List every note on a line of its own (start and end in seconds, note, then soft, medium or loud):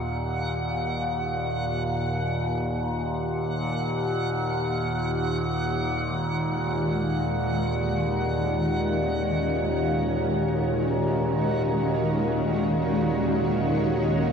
0.00 14.32 D#2 medium
0.00 14.32 A#2 medium
0.00 14.32 F#5 medium
4.92 14.32 D#3 medium
5.36 14.32 G#3 medium
7.59 14.32 C#4 medium
7.94 14.32 A#4 medium
9.05 14.32 F#4 medium